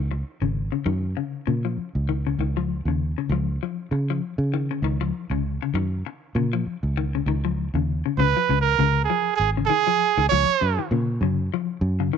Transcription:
Already playing: fingered electric bass C#2
0.11 muted clean electric guitar stroke
0.41 fingered electric bass G#1, clean electric guitar C#3
0.72 clean electric guitar C#3
0.86 fingered electric bass F#2, clean electric guitar D#3
1.17 clean electric guitar C#3
1.47 fingered electric bass A#2, clean electric guitar C#3
1.65 clean electric guitar F3
1.78 muted fingered electric bass stroke
1.95 fingered electric bass C#2
2.09 clean electric guitar D#3
2.27 clean electric guitar C#3
2.39 fingered electric bass C#2, clean electric guitar D#3
2.57 clean electric guitar F3
2.85 fingered electric bass D#2, clean electric guitar C#3
3.18 clean electric guitar C#3
3.29 fingered electric bass C#2, clean electric guitar F3
3.63 clean electric guitar F3
3.91 fingered electric bass C#3, muted clean electric guitar stroke
4.10 clean electric guitar F3
4.38 fingered electric bass C#3
4.54 clean electric guitar D#3
4.71 clean electric guitar C#3
4.82 fingered electric bass C#2, clean electric guitar D#3
5.01 clean electric guitar F3
5.30 fingered electric bass C#2, clean electric guitar C#3
5.62 clean electric guitar C#3
5.74 fingered electric bass F#2, clean electric guitar D#3
6.06 muted clean electric guitar stroke
6.35 fingered electric bass A#2, clean electric guitar C#3
6.53 clean electric guitar F3
6.66 muted fingered electric bass stroke
6.83 fingered electric bass C#2
6.97 clean electric guitar D#3
7.15 clean electric guitar C#3
7.26 fingered electric bass C#2, clean electric guitar D#3
7.45 clean electric guitar F3
7.74 fingered electric bass D#2, clean electric guitar C#3
8.06 clean electric guitar C#3
8.18 fingered electric bass C#2, clean electric guitar C#3, trumpet B4
8.37 clean electric guitar F3
8.49 fingered electric bass C#2, clean electric guitar C#3
8.61 trumpet A#4
8.79 fingered electric bass C#2, clean electric guitar C#3
9.05 trumpet G#4
9.10 clean electric guitar F3
9.36 fingered electric bass G#1, trumpet G#4
9.57 clean electric guitar C#3
9.67 clean electric guitar D#3, trumpet G#4
9.87 clean electric guitar F3
10.17 fingered electric bass C#2, clean electric guitar D#3
10.29 fingered electric bass C#2, clean electric guitar F3, trumpet C#5
10.61 fingered electric bass F#2, muted clean electric guitar stroke
10.79 clean electric guitar D#3
10.91 fingered electric bass A#2, clean electric guitar C#3
11.21 fingered electric bass F#2, clean electric guitar C#3
11.54 clean electric guitar F3
11.81 fingered electric bass F#2
12.00 clean electric guitar C#3
12.13 clean electric guitar D#3

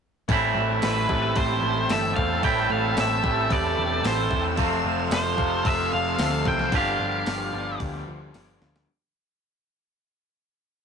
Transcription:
0.28 picked electric bass A1, overdriven electric guitar A2 E3 A3 C4 E4 A4, twelve-string acoustic guitar E3, clean electric guitar G3, string machine A4 G5 A5 E6, kick, open hi-hat
0.55 picked electric bass A1, twelve-string acoustic guitar A3
0.82 picked electric bass A1, twelve-string acoustic guitar C4, lead electric guitar B4, snare, open hi-hat
1.09 picked electric bass A1, overdriven electric guitar A2 E3 A3 C4 E4 A4, twelve-string acoustic guitar G4, kick
1.35 picked electric bass A1, twelve-string acoustic guitar C4, lead electric guitar C5, kick, open hi-hat
1.62 picked electric bass A1, twelve-string acoustic guitar E3
1.89 picked electric bass G1, overdriven electric guitar A2 E3 A3 C4 E4 A4, twelve-string acoustic guitar A3, lead electric guitar E5, snare, open hi-hat
2.16 picked electric bass E2, twelve-string acoustic guitar E3, lead electric guitar F5, kick
2.42 picked electric bass A1, overdriven electric guitar A2 E3 A3 C4 E4 A4, twelve-string acoustic guitar E3, clean electric guitar G3, lead electric guitar G5, kick, open hi-hat
2.70 picked electric bass A1, twelve-string acoustic guitar A3, lead electric guitar F5
2.96 picked electric bass A1, twelve-string acoustic guitar C4, snare, open hi-hat
3.00 lead electric guitar E5
3.23 picked electric bass A1, overdriven electric guitar A2 E3 A3 C4 E4 A4, twelve-string acoustic guitar G4, kick
3.49 picked electric bass E2, twelve-string acoustic guitar C4, lead electric guitar D5, kick, open hi-hat
3.76 picked electric bass E1, twelve-string acoustic guitar E3
4.02 picked electric bass A1, overdriven electric guitar A2 E3 A3 C4 E4 A4, twelve-string acoustic guitar A3, snare, open hi-hat
4.07 lead electric guitar C5
4.31 picked electric bass E2, twelve-string acoustic guitar E3, kick
4.56 picked electric bass F1, distorted electric guitar F2 C3, overdriven electric guitar F3 A3 C4 F4 A4, string machine A4 F5 C6, kick, open hi-hat
4.84 picked electric bass F1
5.11 picked electric bass F1, twelve-string acoustic guitar A3, lead electric guitar C5, snare, open hi-hat
5.37 picked electric bass F1, distorted electric guitar F2 C3, overdriven electric guitar F3 A3 C4 F4 A4, twelve-string acoustic guitar C4, kick
5.64 picked electric bass F1, twelve-string acoustic guitar A3, lead electric guitar E5, kick, open hi-hat
5.93 picked electric bass F1, lead electric guitar F5
6.17 picked electric bass D2, overdriven electric guitar F3 A3 C4 F4 A4, snare, open hi-hat
6.45 picked electric bass C2, twelve-string acoustic guitar E3, lead electric guitar G5, kick
6.59 snare
6.71 picked electric bass G1, overdriven electric guitar G2 D3 F3 B3 D4 G4, twelve-string acoustic guitar F3, distorted electric guitar G3, string machine G4 D6, kick, open hi-hat
6.76 lead electric guitar F5
6.99 picked electric bass G1, twelve-string acoustic guitar F3
7.26 picked electric bass G1, snare, open hi-hat
7.51 picked electric bass G1, overdriven electric guitar G2 D3 F3 B3 D4 G4, distorted electric guitar G3, twelve-string acoustic guitar D4
7.80 picked electric bass D2, kick, open hi-hat
8.07 picked electric bass D2, twelve-string acoustic guitar F3
8.33 picked electric bass G1, overdriven electric guitar G2 D3 F3 B3 D4 G4, twelve-string acoustic guitar F3, snare, open hi-hat
8.61 picked electric bass D2, twelve-string acoustic guitar F3, snare
8.76 snare

